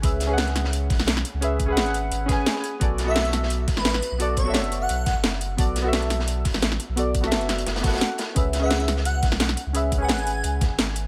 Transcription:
<<
  \new Staff \with { instrumentName = "Digital synth lead" } { \time 4/4 \key cis \phrygian \tempo 4 = 173 r1 | r1 | r8. e''8 r4. b'4 r16 | r8 cis''8 r8. fis''4 r4 r16 |
r1 | r1 | r8. e''8 r8. fis''8 r4. | r8. gis''4. r4. r16 | }
  \new Staff \with { instrumentName = "Synth stab" } { \time 4/4 \key cis \phrygian <cis' gis' b' e''>8. <cis' gis' b' fis''>2.~ <cis' gis' b' fis''>16 | <cis' gis' b' e''>8. <cis' gis' b' fis''>4.~ <cis' gis' b' fis''>16 <cis' gis' b' gis''>4. | <b fis' a' d''>8. <b fis' a' e''>2.~ <b fis' a' e''>16 | <b fis' a' d''>8. <b fis' a' e''>2.~ <b fis' a' e''>16 |
<b fis' a' d''>8. <b fis' a' e''>2.~ <b fis' a' e''>16 | <b fis' a' d''>8. <b fis' a' e''>4.~ <b fis' a' e''>16 <b fis' a' fis''>4. | <cis' gis' b' e''>8. <cis' gis' b' fis''>2.~ <cis' gis' b' fis''>16 | <cis' gis' b' e''>8. <cis' gis' b' fis''>2.~ <cis' gis' b' fis''>16 | }
  \new Staff \with { instrumentName = "Sub bass" } { \clef bass \time 4/4 \key cis \phrygian cis,2~ cis,8 b,,4 r16 cis,16~ | cis,4 gis,,4 gis,,4 r4 | b,,2~ b,,8 a,,4 r16 b,,16~ | b,,4 fis,,4 b,,8. fis,,4~ fis,,16 |
b,,2~ b,,8 a,,4 r16 b,,16~ | b,,4 fis,,4 fis,,4 r4 | cis,2~ cis,8 b,,4 r16 cis,16~ | cis,4 gis,,4 cis,8. gis,,4~ gis,,16 | }
  \new DrumStaff \with { instrumentName = "Drums" } \drummode { \time 4/4 <hh bd>8 <hh sn>8 <hh sn>16 <hh sn>16 <hh sn>16 sn16 hh8 <hh hho bd sn>16 sn16 <hh sn>16 sn16 hh8 | hh8 <hh bd>8 <hh sn>16 hh16 hh8 hh8 <hh bd sn>8 <hh sn>16 sn16 hh8 | <hh bd>8 <hh sn>8 <hh sn>16 <hh sn>16 <hh sn>16 sn16 hh8 <hh hho bd sn>16 sn16 <hh sn>16 sn16 hh8 | hh8 <hh bd>8 <hh sn>16 hh16 hh8 hh8 <hh bd sn>8 <hh sn>16 sn16 hh8 |
<hh bd>8 <hh sn>8 <hh sn>16 <hh sn>16 <hh sn>16 sn16 hh8 <hh hho bd sn>16 sn16 <hh sn>16 sn16 hh8 | hh8 <hh bd>16 sn16 <hh sn>16 hh16 <hh sn>16 hh16 <hh sn>16 <hh sn>16 <hh bd sn>32 <hh sn>32 <hh sn>32 <hh sn>32 <hh sn>8 <hh sn>16 sn16 | <hh bd>8 <hh sn>8 <hh sn>16 <hh sn>16 <hh sn>16 sn16 hh8 <hh hho bd sn>16 sn16 <hh sn>16 sn16 hh8 | hh8 <hh bd>8 <hh sn>16 hh16 hh8 hh8 <hh bd sn>8 <hh sn>16 sn16 hh8 | }
>>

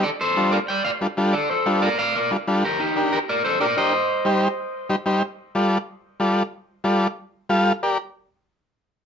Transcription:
<<
  \new Staff \with { instrumentName = "Clean electric guitar" } { \time 4/4 \key d \phrygian \tempo 4 = 185 <a' d''>8 <a' c''>4 <bes' d''>8 <d'' g''>8 <d'' f''>8 r4 | <a' d''>8 <a' c''>4 <bes' d''>8 <d'' f''>8 <bes' d''>8 r4 | <g' bes'>8 <ees' g'>4 <g' bes'>8 <bes' d''>8 <a' c''>8 <bes' d''>8 <c'' ees''>8~ | <c'' ees''>2. r4 |
r1 | r1 | r1 | }
  \new Staff \with { instrumentName = "Transistor combo organ" } { \time 4/4 \key d \phrygian r4 <g d' f' a'>8 r4. <g d' f' a'>8 <g d' f' a'>8 | r4 <g d' f' a'>8 r4. <g d' f' a'>8 <g d' f' a'>8 | r4 <d' g' bes'>8 r4. <d' g' bes'>8 <d' g' bes'>8 | r4 <g ees' g' c''>8 r4. <g ees' g' c''>8 <g ees' g' c''>8 |
r4 <g f' a' d''>8 r4. <g f' a' d''>8 r8 | r4 <g f' a' d''>8 r4. <g f' a' f''>8 r8 | <g' bes' d''>8 r2. r8 | }
>>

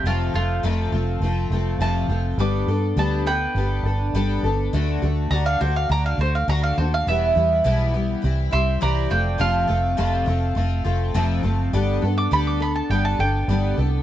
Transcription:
<<
  \new Staff \with { instrumentName = "Mandolin" } { \time 4/4 \key g \major \tempo 4 = 103 << { f'8 f'8 r2 a''4 | d'''4 a''8 g''2~ g''8 | r4 bes''16 f''16 c''16 f''16 bes''16 f''16 c''16 f''16 bes''16 f''16 c''16 f''16 | e''2 r8 c'''8 bes''8 g''8 |
f''2. r4 | r8. d'''16 b''16 d'''16 b''16 a''16 g''16 a''16 g''4 r8 | } \\ { r1 | r4. b'2~ b'8~ | b'8 r2. r8 | r2 r8 e''8 d''8 d''8 |
r1 | r1 | } >> }
  \new Staff \with { instrumentName = "Twelve-string acoustic guitar" } { \time 4/4 \key g \major <f, c f a c' f'>8 <f a c' f'>8 <f, c f a c' f'>8 <f a c' f'>8 <f a c' f'>8 <f a c' f'>8 <f, c f a c' f'>8 <f a c' f'>8 | <g b d' a'>8 <b d' a'>8 <g b d' a'>8 <b d' a'>8 <g b d' a'>8 <b d' a'>8 <g b d' a'>8 <b d' a'>8 | <d a d' fis'>8 <a d' fis'>8 <d a d' fis'>8 <a d' fis'>8 <d a d' fis'>8 <a d' fis'>8 <d a d' fis'>8 <a d' fis'>8 | <e, b, e g b e'>8 <e g b e'>8 <e, b, e g b e'>8 <e g b e'>8 <e g c' e'>8 <g c' e'>8 <c e g c' e'>8 <f a c' f'>8 |
<f, c f a c' f'>8 <f a c' f'>8 <f, c f a c' f'>8 <f a c' f'>8 <f a c' f'>8 <f a c' f'>8 <f, c f a c' f'>8 <f a c' f'>8 | <g b d' a'>8 <b d' a'>8 <g b d' a'>8 <b d' a'>8 <g b d' a'>8 <b d' a'>8 <g b d' a'>8 <b d' a'>8 | }
  \new Staff \with { instrumentName = "Fingered electric bass" } { \clef bass \time 4/4 \key g \major f,,8 f,,8 f,,8 f,,8 f,,8 f,,8 f,,8 f,,8 | g,,8 g,8 d,4 g,,8 g,,8 g,,8 g,,8 | d,8 d,8 d,8 d,8 d,8 d,8 d,8 ees,8 | e,,8 e,8 b,,4 c,8 c,8 c,8 f,,8 |
f,,8 f,,8 f,,8 f,,8 f,,8 f,,8 f,,8 fis,,8 | g,,8 g,8 d,4 g,,8 g,,8 g,,8 c,8 | }
>>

